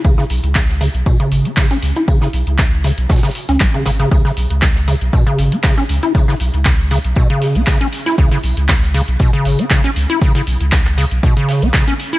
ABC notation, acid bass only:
X:1
M:4/4
L:1/16
Q:"Swing 16ths" 1/4=118
K:C#m
V:1 name="Acid bass" clef=bass
C, C, z2 C, z C, z B,, C,2 C C, C z E | C, C, z2 C, z C, z B,, C, z C C, C, C, C, | C, C, z2 C, z C, z B,, C,2 C C, C z E | C, C, z2 C, z C, z B,, C,2 C C, C z E |
C, C, z2 C, z C, z B,, C,2 C C, C z E | C, C, z2 C, z C, z B,, C,2 C C, C z E |]